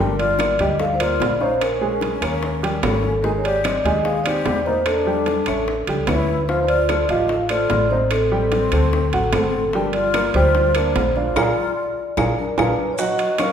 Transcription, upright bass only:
0.00 0.55 G1 medium
0.59 1.16 D2 medium
1.20 2.16 A#1 medium
2.22 2.79 D#2 medium
2.82 3.78 G#1 medium
3.84 4.41 D#2 medium
4.45 5.41 E2 medium
5.47 5.85 A1 medium
5.87 6.06 C#2 medium
6.08 7.03 D2 medium
7.09 7.66 A1 medium
7.70 8.66 A1 medium
8.72 9.10 D2 medium
9.13 9.32 A1 medium
9.33 10.28 G1 medium
10.34 10.91 D2 medium
10.95 11.33 A#1 medium
11.36 11.51 A#1 medium
12.17 12.32 A#1 medium
12.58 12.73 A#1 medium

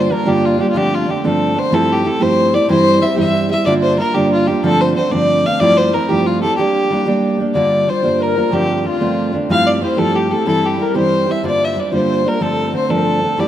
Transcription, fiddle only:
0.00 0.14 C5 medium
0.12 0.30 A#4 medium
0.28 0.47 G4 medium
0.45 0.62 F4 medium
0.61 0.70 G4 medium
0.70 0.79 F4 medium
0.77 0.96 G4 medium
0.95 1.12 F4 medium
1.10 1.25 G4 medium
1.26 1.60 A4 medium
1.59 1.76 C5 loud
1.74 1.94 A4 medium
1.92 2.09 G4 medium
2.07 2.23 A4 medium
2.22 2.56 C5 loud
2.54 2.70 D5 medium
2.70 3.04 C5 loud
3.02 3.18 E5 medium
3.18 3.49 E5 loud
3.50 3.65 E5 medium
3.66 3.74 D5 medium
3.82 3.97 C5 medium
3.99 4.16 A#4 medium
4.14 4.32 G4 medium
4.33 4.49 F4 medium
4.47 4.63 G4 medium
4.65 4.83 A4 loud
4.81 4.96 C5 medium
4.96 5.13 C5 medium
5.11 5.47 D5 loud
5.46 5.61 F5 loud
5.60 5.78 D5 loud
5.77 5.95 C5 loud
5.94 6.11 A#4 medium
6.09 6.28 G4 medium
6.26 6.41 F4 medium
6.42 6.56 A4 medium
6.57 7.35 G4 medium
7.54 7.90 D5 medium
7.89 8.24 C5 medium
8.22 8.55 A#4 medium
8.53 8.77 G4 medium
8.77 8.88 G4 medium
8.86 9.34 F4 medium
9.51 9.68 F5 loud
9.67 9.82 D5 medium
9.83 10.00 C5 medium
9.98 10.17 A4 medium
10.15 10.32 G4 medium
10.31 10.46 A4 medium
10.47 10.67 A4 medium
10.65 10.83 G4 medium
10.82 10.96 A#4 medium
10.96 11.32 C5 medium
11.31 11.45 E5 medium
11.46 11.66 D5 medium
11.64 11.81 E5 medium
11.80 11.93 D5 medium
11.94 12.29 C5 medium
12.28 12.44 A#4 medium
12.42 12.74 A4 medium
12.76 12.92 C5 medium
12.90 13.41 A4 medium
13.39 13.48 D5 medium

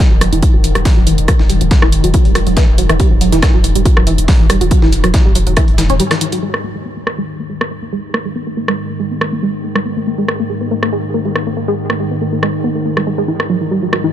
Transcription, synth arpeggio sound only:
0.11 0.13 F#3 medium
0.21 0.28 F#3 medium
0.32 0.38 E3 loud
0.54 0.58 F#3 medium
0.64 0.68 E3 medium
0.75 0.81 G3 medium
0.85 0.88 F#3 medium
0.97 1.03 F#3 medium
1.07 1.14 E3 loud
1.28 1.33 F#3 medium
1.40 1.44 E3 medium
1.50 1.56 G3 medium
1.61 1.64 F#3 medium
1.71 1.78 F#3 medium
1.82 1.88 E3 loud
2.04 2.08 F#3 medium
2.14 2.18 E3 medium
2.25 2.31 G3 medium
2.35 2.38 F#3 medium
2.47 2.53 F#3 medium
2.57 2.64 E3 loud
2.78 2.83 F#3 medium
2.90 2.94 E3 medium
3.00 3.06 G3 medium
3.11 3.13 F#3 medium
3.21 3.28 F#3 medium
3.32 3.38 E3 loud
3.54 3.58 F#3 medium
3.64 3.69 E3 medium
3.75 3.81 G3 medium
3.86 3.88 F#3 medium
3.97 4.03 F#3 medium
4.07 4.14 E3 loud
4.28 4.33 F#3 medium
4.40 4.44 E3 medium
4.50 4.56 G3 medium
4.61 4.63 F#3 medium
4.71 4.78 F#3 medium
4.83 4.89 E3 loud
5.04 5.08 F#3 medium
5.14 5.19 E3 medium
5.25 5.31 G3 medium
5.36 5.38 F#3 medium
5.47 5.53 F#3 medium
5.57 5.64 E3 loud
5.79 5.83 E3 medium
5.90 5.94 C#4 loud
6.00 6.03 G3 medium
6.11 6.15 E3 medium
6.21 6.24 E3 medium
6.33 6.39 F#3 medium
6.43 6.49 G#3 loud
6.64 6.69 A#3 medium
6.75 6.79 G#3 medium
6.86 6.92 B3 medium
6.97 6.99 A#3 medium
7.07 7.14 A#3 medium
7.18 7.24 G#3 loud
7.40 7.44 A#3 medium
7.50 7.54 G#3 medium
7.61 7.67 B3 medium
7.71 7.74 A#3 medium
7.83 7.88 A#3 medium
7.93 7.99 G#3 loud
8.14 8.19 A#3 medium
8.25 8.29 G#3 medium
8.36 8.42 B3 medium
8.47 8.49 A#3 medium
8.57 8.64 A#3 medium
8.68 8.74 G#3 loud
8.90 8.94 A#3 medium
9.00 9.04 G#3 medium
9.11 9.17 B3 medium
9.21 9.24 A#3 medium
9.33 9.38 A#3 medium
9.43 9.49 G#3 loud
9.64 9.69 A#3 medium
9.75 9.79 G#3 medium
9.85 9.92 B3 medium
9.97 9.99 A#3 medium
10.07 10.14 A#3 medium
10.18 10.24 G#3 loud
10.40 10.44 A#3 medium
10.50 10.54 G#3 medium
10.61 10.67 B3 medium
10.71 10.74 A#3 medium
10.83 10.88 A#3 medium
10.93 10.99 G#3 loud
11.14 11.19 A#3 medium
11.25 11.29 G#3 medium
11.35 11.42 B3 medium
11.47 11.49 A#3 medium
11.57 11.64 A#3 medium
11.68 11.74 G#3 loud
11.90 11.94 A#3 medium
12.00 12.04 G#3 medium
12.11 12.17 B3 medium
12.21 12.24 A#3 medium
12.33 12.39 A#3 medium
12.43 12.49 G#3 loud
12.64 12.69 B3 loud
12.75 12.78 A#3 medium
12.85 12.90 A#3 medium
12.97 13.01 G#3 medium
13.07 13.10 G#3 loud
13.18 13.22 G#3 loud
13.28 13.35 E3 loud
13.50 13.54 F#3 medium
13.61 13.65 E3 medium
13.71 13.78 G3 medium
13.83 13.85 F#3 medium
13.93 13.99 F#3 medium
14.04 14.10 E3 loud

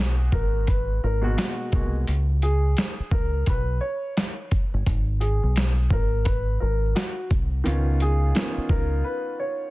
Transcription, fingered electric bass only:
0.00 0.29 B1 loud
0.33 0.99 G#1 medium
1.04 1.35 G#1 loud
1.73 2.04 C2 medium
2.08 2.74 C#2 loud
3.00 muted fingered electric bass stroke soft
3.12 3.43 C#2 loud
3.47 3.79 B1 loud
4.74 4.86 G1 medium
4.87 5.39 G#1 loud
5.43 5.87 B1 loud
5.91 6.57 G#1 loud
6.62 6.93 G#1 loud
7.31 7.62 C2 loud
7.66 8.32 C#2 loud
8.58 muted fingered electric bass stroke soft
8.70 9.01 C#2 medium

